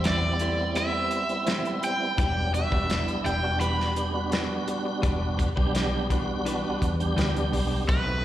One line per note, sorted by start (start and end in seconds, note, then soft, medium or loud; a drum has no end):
0.00 1.08 E2 medium
0.00 0.37 G3 medium
0.00 0.37 B3 medium
0.00 0.37 C4 medium
0.00 0.37 E4 medium
0.04 0.72 D5 medium
0.04 muted clean electric guitar stroke soft
0.04 snare loud
0.04 closed hi-hat loud
0.40 1.24 G3 medium
0.40 0.58 A3 medium
0.40 1.24 B3 medium
0.40 1.24 C4 medium
0.40 1.25 E4 medium
0.40 0.58 E4 medium
0.40 0.59 G4 medium
0.40 0.58 C5 medium
0.40 closed hi-hat medium
0.75 0.94 A3 medium
0.75 0.94 E4 medium
0.75 0.94 G4 medium
0.75 0.93 C5 medium
0.75 1.84 E5 medium
0.75 closed hi-hat medium
0.94 1.11 E4 soft
0.94 1.12 G4 soft
0.94 1.11 C5 soft
1.11 muted clean electric guitar stroke soft
1.11 closed hi-hat medium
1.29 2.13 G3 medium
1.29 2.13 B3 medium
1.29 2.13 C4 medium
1.29 2.13 E4 medium
1.29 closed hi-hat soft
1.47 1.65 A3 medium
1.47 1.64 E4 medium
1.47 1.64 G4 medium
1.47 1.64 C5 medium
1.47 snare loud
1.47 closed hi-hat medium
1.65 muted clean electric guitar stroke soft
1.65 closed hi-hat soft
1.82 2.18 G5 medium
1.82 muted clean electric guitar stroke soft
1.82 closed hi-hat medium
2.00 muted clean electric guitar stroke soft
2.18 2.64 E1 loud
2.18 2.36 E3 medium
2.18 2.52 F#3 medium
2.18 2.52 G3 medium
2.18 2.52 B3 medium
2.18 2.36 D4 medium
2.18 2.52 D4 medium
2.18 2.36 G4 medium
2.18 2.35 B4 medium
2.18 2.54 G5 medium
2.18 kick loud
2.18 closed hi-hat medium
2.36 muted clean electric guitar stroke soft
2.54 2.87 G3 medium
2.54 2.87 B3 medium
2.54 2.87 D4 medium
2.54 2.87 F#4 medium
2.54 3.21 E5 loud
2.54 muted clean electric guitar stroke soft
2.54 closed hi-hat medium
2.72 3.02 E1 medium
2.72 2.88 D4 soft
2.72 2.89 G4 medium
2.72 2.89 B4 soft
2.72 kick medium
2.89 3.40 G3 medium
2.89 3.40 B3 medium
2.89 3.40 D4 medium
2.89 3.40 E4 medium
2.89 muted clean electric guitar stroke soft
2.89 snare loud
2.89 closed hi-hat medium
3.08 muted fingered electric bass stroke soft
3.08 closed hi-hat soft
3.24 4.47 E1 medium
3.24 3.43 E3 medium
3.24 3.43 D4 soft
3.24 3.42 G4 soft
3.24 3.42 B4 medium
3.24 3.60 G5 medium
3.24 closed hi-hat medium
3.43 3.93 G3 medium
3.43 3.93 B3 medium
3.43 3.93 D4 medium
3.43 3.94 F#4 medium
3.43 muted clean electric guitar stroke soft
3.60 3.78 E3 medium
3.60 3.79 D4 medium
3.60 3.78 G4 medium
3.60 3.77 B4 medium
3.60 4.63 B5 loud
3.60 closed hi-hat medium
3.78 3.96 D4 soft
3.78 3.96 G4 soft
3.78 3.96 B4 soft
3.78 snare soft
3.95 4.12 G3 medium
3.95 4.13 B3 medium
3.95 4.13 D4 medium
3.95 4.13 G4 medium
3.95 muted clean electric guitar stroke soft
3.95 closed hi-hat medium
4.14 5.49 G3 medium
4.14 5.49 B3 medium
4.14 5.49 D4 medium
4.14 5.49 F#4 medium
4.32 4.50 E3 medium
4.32 4.50 D4 medium
4.32 4.49 G4 medium
4.32 4.49 B4 medium
4.32 snare loud
4.32 closed hi-hat medium
4.50 muted clean electric guitar stroke soft
4.67 muted clean electric guitar stroke soft
4.67 closed hi-hat medium
4.85 muted clean electric guitar stroke medium
5.02 5.49 E1 loud
5.02 5.21 E3 medium
5.02 5.21 D4 medium
5.02 5.20 G4 medium
5.02 5.20 B4 medium
5.02 kick loud
5.02 closed hi-hat medium
5.21 muted clean electric guitar stroke soft
5.38 muted clean electric guitar stroke soft
5.38 kick medium
5.38 closed hi-hat medium
5.56 6.63 B1 medium
5.56 6.07 G3 medium
5.56 6.07 B3 medium
5.56 6.07 D4 medium
5.56 5.73 D4 soft
5.56 6.07 G4 loud
5.56 5.73 G4 medium
5.56 5.74 B4 medium
5.56 kick medium
5.74 muted clean electric guitar stroke soft
5.74 snare loud
5.74 closed hi-hat medium
6.10 6.28 E3 medium
6.10 6.95 G3 medium
6.10 6.95 B3 medium
6.10 6.95 D4 medium
6.10 6.28 D4 medium
6.10 6.95 F#4 medium
6.10 6.28 G4 medium
6.10 6.27 B4 medium
6.10 kick medium
6.10 closed hi-hat medium
6.28 muted clean electric guitar stroke soft
6.45 6.64 E3 medium
6.45 6.64 D4 medium
6.45 6.63 G4 medium
6.45 6.62 B4 medium
6.45 closed hi-hat medium
6.64 6.80 D4 soft
6.64 6.81 G4 medium
6.64 6.81 B4 medium
6.82 7.14 E2 medium
6.82 muted clean electric guitar stroke soft
6.82 kick medium
6.82 closed hi-hat medium
7.00 7.84 G3 medium
7.00 7.84 B3 medium
7.00 7.84 D4 medium
7.00 7.85 G4 loud
7.00 closed hi-hat soft
7.16 7.49 D2 medium
7.16 7.35 E3 medium
7.16 7.35 D4 medium
7.16 7.34 G4 medium
7.16 7.34 B4 medium
7.16 snare loud
7.16 closed hi-hat medium
7.35 muted clean electric guitar stroke medium
7.35 closed hi-hat soft
7.52 7.85 B1 medium
7.52 muted clean electric guitar stroke soft
7.52 open hi-hat medium
7.71 muted clean electric guitar stroke soft
7.88 8.25 B1 loud
7.88 8.23 A3 medium
7.88 8.07 B3 medium
7.88 8.23 C4 medium
7.88 8.06 D#4 medium
7.88 8.23 D#4 medium
7.88 8.23 F#4 medium
7.88 8.06 A4 medium
7.88 8.25 B4 medium
7.88 8.05 C5 medium
7.88 kick loud
7.88 closed hi-hat medium
8.07 muted clean electric guitar stroke soft